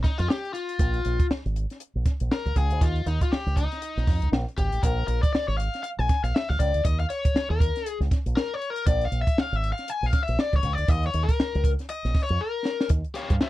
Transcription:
0.04 D#4, kick, snare, closed hi-hat
0.18 F2 F4, closed hi-hat
0.28 G4, snare
0.45 closed hi-hat
0.53 F4, closed hi-hat
0.69 closed hi-hat
0.79 A#1, kick, closed hi-hat
0.94 closed hi-hat
1.05 A#1, closed hi-hat
1.20 kick, closed hi-hat
1.30 muted fingered electric bass stroke, snare
1.45 G#1, closed hi-hat
1.56 closed hi-hat
1.70 snare, closed hi-hat
1.80 closed hi-hat
1.95 A#1
2.05 kick, snare, closed hi-hat
2.20 A#1, closed hi-hat
2.32 A#4, snare
2.46 C#2, kick, closed hi-hat
2.56 C#2 G#4, kick, snare, closed hi-hat
2.70 D2, closed hi-hat
2.81 D#2 F4, kick, closed hi-hat
2.96 closed hi-hat
3.06 D#2 D#4, closed hi-hat
3.21 F4, kick, closed hi-hat
3.32 G4, muted fingered electric bass stroke, snare
3.46 C#2, closed hi-hat
3.56 D#4, kick, closed hi-hat
3.72 snare, closed hi-hat
3.82 closed hi-hat
3.97 A#1, snare, closed hi-hat
4.07 F2, kick, snare, open hi-hat
4.22 C#2, closed hi-hat
4.32 A#1, snare
4.48 closed hi-hat
4.58 G#1 G4, kick, closed hi-hat
4.72 A1, closed hi-hat
4.83 A#1 A#4, kick, closed hi-hat
5.08 A#1 A#4, closed hi-hat
5.23 D5, kick, closed hi-hat
5.33 D5, muted fingered electric bass stroke, snare
5.48 G#1 C#5, closed hi-hat
5.58 F5, closed hi-hat
5.74 snare, closed hi-hat
5.83 F5, closed hi-hat
5.99 A#1 G#5, closed hi-hat
6.09 kick, snare, closed hi-hat
6.23 A#1 F5, closed hi-hat
6.34 E5, snare
6.49 C#2 F5, kick, closed hi-hat
6.59 C#2 D5, kick, closed hi-hat
6.74 D2, closed hi-hat
6.85 D#2 D#5, kick, closed hi-hat
6.99 F5, closed hi-hat
7.10 C#5, closed hi-hat
7.25 muted fingered electric bass stroke, kick, closed hi-hat
7.34 muted fingered electric bass stroke, snare
7.50 D#2 A#4
7.60 kick, closed hi-hat
7.76 snare, closed hi-hat
7.86 closed hi-hat
8.00 C#2, snare, closed hi-hat
8.11 kick, snare, closed hi-hat
8.26 A#1, closed hi-hat
8.37 A#4, snare
8.54 C#5
8.62 closed hi-hat
8.70 A#4
8.76 closed hi-hat
8.87 A#1 D5, kick, closed hi-hat
9.01 F5, closed hi-hat
9.12 A#1, closed hi-hat
9.22 E5
9.27 kick, closed hi-hat
9.37 F5, muted fingered electric bass stroke, snare
9.52 G#1 E5, closed hi-hat
9.64 closed hi-hat
9.72 F5
9.78 snare, closed hi-hat
9.88 G#5, closed hi-hat
10.03 A#1 F5, closed hi-hat
10.13 kick, snare, closed hi-hat
10.23 E5
10.28 A#1, closed hi-hat
10.39 D5, snare
10.53 C#2 C#5, kick, closed hi-hat
10.63 C#2, kick, snare, closed hi-hat
10.73 D5
10.78 D2, closed hi-hat
10.88 D#2 D#5, kick, closed hi-hat
11.03 C#5, closed hi-hat
11.14 D#2, closed hi-hat
11.23 A#4
11.29 kick, closed hi-hat
11.40 muted fingered electric bass stroke, snare
11.55 C#2, closed hi-hat
11.64 kick, closed hi-hat
11.79 snare, closed hi-hat
11.89 D#5, closed hi-hat
12.04 A#1, snare, closed hi-hat
12.14 kick, snare, open hi-hat
12.23 C#5
12.29 F2, closed hi-hat
12.41 A#4
12.65 snare
12.81 snare
12.89 D#2, kick, closed hi-hat
13.04 closed hi-hat
13.14 G4 C#5 F5, closed hi-hat
13.30 G2, kick, closed hi-hat
13.41 G4 C#5 F5, snare

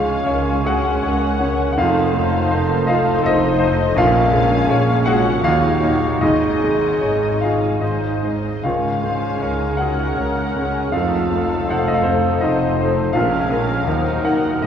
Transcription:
Already playing: C#2 G#3 C#4 F4 G#4 C#5 F5 G#5
0.27 C#2 A#4 C#5
0.62 G#3 G#4 C#5
0.66 C#4 F#4 G#4 F#5
1.03 C#2 A#4 C#5
1.39 G#3 C#4 C#5
1.73 D#4 F#5
1.77 F1 F2 A3 D#4 F4 A4 C5 F5 A5
2.14 A3 D#4 C5
2.51 F1 F2 A#4 C5
2.87 A3 D#4 F4 C5 D#5 F5
2.92 A4
3.22 F1 F2 A4 C5 D#5
3.27 D#4
3.59 A3 D#4 C5
3.94 A#1 A#2 C#4 A#4 C#5 F5 G#5
3.99 F4
4.31 G#3 C#4 C#5
4.69 A#1 A#2 G#4 C#5
5.05 G#3 C#4 F4 F#4 G#4 C#5 F#5
5.43 D#2 F#3 D#4 F4 F#4 C#5 F5 F#5
5.79 F#3 D#4 C#5
6.21 G#1 G#2 D#4 G#4 D#5 G#5
6.60 G#3 D#4 C#5
7.01 G#1 G#2 C#5
7.40 G#3 D#4 F4 C#5 D#5 F5
7.81 G#1 G#2 G#3 D#4 C5 D#5
8.23 G#3 D#4 C5
8.63 C#2 C#4 F4 A#4 C#5 F5 G#5
9.03 G#3 C#4 G#4 C5 C#5
9.41 C#2 D#4 A#4 C#5
9.77 G#3 C#4 F#4 G#4 C#5 F#5
10.18 C#2 C#4 A#4 C#5 A#5
10.56 G#3 C#4 G#4 C#5 G#5
10.92 F1 F2 A3 C4 D#4 F4 A4 C5 F5
10.97 A5
11.31 A3 D#4 C5
11.68 F1 F2 F4 A4 C5 F#5
11.78 F5
11.88 D#5
11.94 F5
12.03 C4 D#4 C5 D#5
12.07 A3 D#4 C5
12.41 F1 F2 C4 D#4 A4 C5 D#5
12.45 D#5 A5
12.80 A3 D#4 C5
13.13 A#1 A#2 G#3 C#4 F4 A#4 F5 G#5
13.17 F5
13.50 C#4 A#4
13.86 D#2 F#3 D#4 A#4 C5 F#5
14.24 D#4 F#4 A#4 F#5
14.62 G#2 G#4 C5 D#5

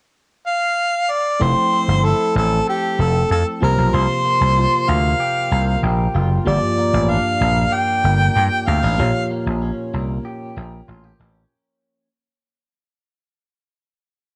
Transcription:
0.47 F5
1.10 D5
1.40 F1 F3 A3 C4 E4 C5
1.72 C4
1.88 G1
2.04 E4 A4
2.35 A1 C4 A4
2.67 G4 A4
2.99 F1 C4 A4
3.30 F2 A4
3.61 C2 C3 F3 A#3 F4 G4 A#4 C5
3.78 B1
3.94 C2 F3 C5
4.25 A#3
4.41 C2
4.57 F4
4.88 D2 A#3 F5
5.20 G4
5.51 C2 A#3
5.83 A#1 G4
6.14 F#1 F4
6.45 G1 G2 F3 A#3 F4 G4 D5
6.78 A#3
6.93 A1
7.09 D4 F5
7.41 A#1 A#3
7.72 G4 G5
8.04 G1 A#3
8.36 G2 G4
8.67 D2 C4 F5
8.83 A1 D4
8.98 A#1 A#2 F3 A#3 F4 G4 C#5
9.30 A#3
9.46 A#1
9.62 C#4
9.93 C2 A#3
10.25 G4
10.56 A#1 A#3
10.88 A1 F4
11.04 G4
11.20 A1 C#4

